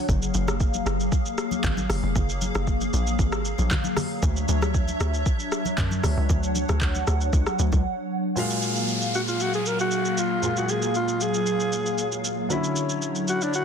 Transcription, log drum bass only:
0, 0, Header, 1, 2, 480
1, 0, Start_track
1, 0, Key_signature, 6, "major"
1, 0, Tempo, 517241
1, 82, Time_signature, 4, 2, 24, 8
1, 12663, End_track
2, 0, Start_track
2, 0, Title_t, "Log drum bass"
2, 0, Program_c, 0, 39
2, 81, Note_on_c, 0, 30, 111
2, 296, Note_off_c, 0, 30, 0
2, 320, Note_on_c, 0, 30, 94
2, 750, Note_off_c, 0, 30, 0
2, 797, Note_on_c, 0, 30, 99
2, 1014, Note_off_c, 0, 30, 0
2, 1522, Note_on_c, 0, 32, 95
2, 1737, Note_off_c, 0, 32, 0
2, 1759, Note_on_c, 0, 30, 91
2, 1872, Note_off_c, 0, 30, 0
2, 1884, Note_on_c, 0, 29, 90
2, 1989, Note_off_c, 0, 29, 0
2, 2001, Note_on_c, 0, 30, 113
2, 2328, Note_off_c, 0, 30, 0
2, 2367, Note_on_c, 0, 30, 95
2, 2685, Note_off_c, 0, 30, 0
2, 2723, Note_on_c, 0, 34, 100
2, 2937, Note_off_c, 0, 34, 0
2, 2960, Note_on_c, 0, 32, 90
2, 3287, Note_off_c, 0, 32, 0
2, 3328, Note_on_c, 0, 34, 90
2, 3430, Note_off_c, 0, 34, 0
2, 3922, Note_on_c, 0, 38, 105
2, 4137, Note_off_c, 0, 38, 0
2, 4164, Note_on_c, 0, 38, 97
2, 4593, Note_off_c, 0, 38, 0
2, 4643, Note_on_c, 0, 38, 99
2, 4857, Note_off_c, 0, 38, 0
2, 5363, Note_on_c, 0, 42, 97
2, 5577, Note_off_c, 0, 42, 0
2, 5603, Note_on_c, 0, 38, 94
2, 5714, Note_off_c, 0, 38, 0
2, 5729, Note_on_c, 0, 37, 84
2, 5831, Note_off_c, 0, 37, 0
2, 5844, Note_on_c, 0, 38, 111
2, 6169, Note_off_c, 0, 38, 0
2, 6211, Note_on_c, 0, 38, 103
2, 6527, Note_off_c, 0, 38, 0
2, 6566, Note_on_c, 0, 38, 95
2, 6779, Note_off_c, 0, 38, 0
2, 6803, Note_on_c, 0, 37, 91
2, 6914, Note_off_c, 0, 37, 0
2, 7046, Note_on_c, 0, 38, 95
2, 7156, Note_off_c, 0, 38, 0
2, 7171, Note_on_c, 0, 37, 92
2, 7272, Note_off_c, 0, 37, 0
2, 12663, End_track
0, 0, End_of_file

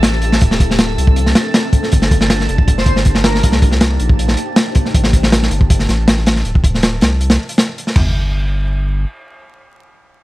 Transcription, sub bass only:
0, 0, Header, 1, 2, 480
1, 0, Start_track
1, 0, Key_signature, -2, "minor"
1, 0, Tempo, 377358
1, 527, Time_signature, 4, 2, 24, 8
1, 13015, End_track
2, 0, Start_track
2, 0, Title_t, "Sub bass"
2, 0, Program_c, 0, 38
2, 0, Note_on_c, 0, 33, 95
2, 509, Note_off_c, 0, 33, 0
2, 531, Note_on_c, 0, 26, 100
2, 1230, Note_off_c, 0, 26, 0
2, 1243, Note_on_c, 0, 36, 100
2, 1706, Note_off_c, 0, 36, 0
2, 2452, Note_on_c, 0, 31, 97
2, 3151, Note_off_c, 0, 31, 0
2, 3166, Note_on_c, 0, 29, 98
2, 3628, Note_off_c, 0, 29, 0
2, 3637, Note_on_c, 0, 31, 95
2, 4344, Note_off_c, 0, 31, 0
2, 4372, Note_on_c, 0, 36, 98
2, 5071, Note_off_c, 0, 36, 0
2, 5089, Note_on_c, 0, 34, 101
2, 5549, Note_off_c, 0, 34, 0
2, 6288, Note_on_c, 0, 33, 102
2, 6989, Note_off_c, 0, 33, 0
2, 7008, Note_on_c, 0, 31, 102
2, 7469, Note_off_c, 0, 31, 0
2, 7487, Note_on_c, 0, 33, 96
2, 8189, Note_off_c, 0, 33, 0
2, 8204, Note_on_c, 0, 26, 99
2, 8907, Note_off_c, 0, 26, 0
2, 8927, Note_on_c, 0, 36, 100
2, 9388, Note_off_c, 0, 36, 0
2, 10123, Note_on_c, 0, 31, 95
2, 11514, Note_off_c, 0, 31, 0
2, 13015, End_track
0, 0, End_of_file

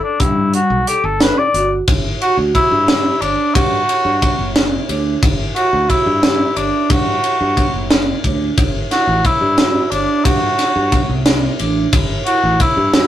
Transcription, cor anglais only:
0, 0, Header, 1, 2, 480
1, 0, Start_track
1, 0, Key_signature, 1, "major"
1, 0, Tempo, 669643
1, 146, Time_signature, 5, 3, 24, 8
1, 9369, End_track
2, 0, Start_track
2, 0, Title_t, "Cor anglais"
2, 0, Program_c, 0, 69
2, 25, Note_on_c, 0, 62, 81
2, 146, Note_on_c, 0, 64, 94
2, 156, Note_off_c, 0, 62, 0
2, 386, Note_off_c, 0, 64, 0
2, 391, Note_on_c, 0, 66, 94
2, 629, Note_on_c, 0, 67, 90
2, 639, Note_off_c, 0, 66, 0
2, 750, Note_on_c, 0, 69, 94
2, 761, Note_off_c, 0, 67, 0
2, 873, Note_on_c, 0, 71, 107
2, 884, Note_off_c, 0, 69, 0
2, 991, Note_on_c, 0, 74, 91
2, 1002, Note_off_c, 0, 71, 0
2, 1229, Note_off_c, 0, 74, 0
2, 1590, Note_on_c, 0, 66, 99
2, 1697, Note_off_c, 0, 66, 0
2, 1825, Note_on_c, 0, 64, 99
2, 2304, Note_on_c, 0, 62, 84
2, 2315, Note_off_c, 0, 64, 0
2, 2541, Note_on_c, 0, 66, 97
2, 2552, Note_off_c, 0, 62, 0
2, 3265, Note_off_c, 0, 66, 0
2, 3985, Note_on_c, 0, 66, 103
2, 4223, Note_on_c, 0, 64, 90
2, 4233, Note_off_c, 0, 66, 0
2, 4708, Note_on_c, 0, 62, 78
2, 4719, Note_off_c, 0, 64, 0
2, 4953, Note_on_c, 0, 66, 96
2, 4964, Note_off_c, 0, 62, 0
2, 5671, Note_off_c, 0, 66, 0
2, 6390, Note_on_c, 0, 66, 106
2, 6632, Note_on_c, 0, 64, 99
2, 6643, Note_off_c, 0, 66, 0
2, 7058, Note_off_c, 0, 64, 0
2, 7058, Note_on_c, 0, 64, 60
2, 7103, Note_on_c, 0, 62, 83
2, 7114, Note_off_c, 0, 64, 0
2, 7346, Note_on_c, 0, 66, 95
2, 7357, Note_off_c, 0, 62, 0
2, 8068, Note_off_c, 0, 66, 0
2, 8787, Note_on_c, 0, 66, 108
2, 9036, Note_on_c, 0, 64, 96
2, 9047, Note_off_c, 0, 66, 0
2, 9271, Note_off_c, 0, 64, 0
2, 9276, Note_on_c, 0, 64, 96
2, 9369, Note_off_c, 0, 64, 0
2, 9369, End_track
0, 0, End_of_file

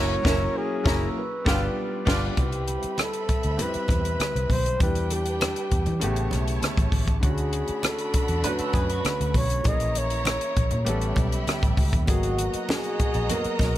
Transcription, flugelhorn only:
0, 0, Header, 1, 2, 480
1, 0, Start_track
1, 0, Tempo, 606673
1, 1878, Time_signature, 4, 2, 24, 8
1, 10902, End_track
2, 0, Start_track
2, 0, Title_t, "Flugelhorn"
2, 0, Program_c, 0, 56
2, 0, Note_on_c, 0, 73, 127
2, 450, Note_on_c, 0, 68, 106
2, 462, Note_off_c, 0, 73, 0
2, 869, Note_off_c, 0, 68, 0
2, 879, Note_on_c, 0, 70, 64
2, 935, Note_on_c, 0, 71, 89
2, 947, Note_off_c, 0, 70, 0
2, 1406, Note_off_c, 0, 71, 0
2, 1897, Note_on_c, 0, 67, 76
2, 2380, Note_on_c, 0, 69, 86
2, 2392, Note_off_c, 0, 67, 0
2, 2862, Note_on_c, 0, 71, 92
2, 2874, Note_off_c, 0, 69, 0
2, 3578, Note_on_c, 0, 72, 102
2, 3590, Note_off_c, 0, 71, 0
2, 3809, Note_off_c, 0, 72, 0
2, 3818, Note_on_c, 0, 71, 96
2, 4058, Note_on_c, 0, 67, 83
2, 4070, Note_off_c, 0, 71, 0
2, 5010, Note_off_c, 0, 67, 0
2, 5739, Note_on_c, 0, 68, 80
2, 6224, Note_on_c, 0, 69, 85
2, 6236, Note_off_c, 0, 68, 0
2, 6702, Note_on_c, 0, 71, 94
2, 6714, Note_off_c, 0, 69, 0
2, 7412, Note_off_c, 0, 71, 0
2, 7417, Note_on_c, 0, 73, 98
2, 7659, Note_on_c, 0, 75, 107
2, 7671, Note_off_c, 0, 73, 0
2, 7897, Note_on_c, 0, 73, 99
2, 7909, Note_off_c, 0, 75, 0
2, 8849, Note_off_c, 0, 73, 0
2, 9576, Note_on_c, 0, 66, 80
2, 10017, Note_off_c, 0, 66, 0
2, 10059, Note_on_c, 0, 68, 92
2, 10536, Note_on_c, 0, 70, 95
2, 10548, Note_off_c, 0, 68, 0
2, 10902, Note_off_c, 0, 70, 0
2, 10902, End_track
0, 0, End_of_file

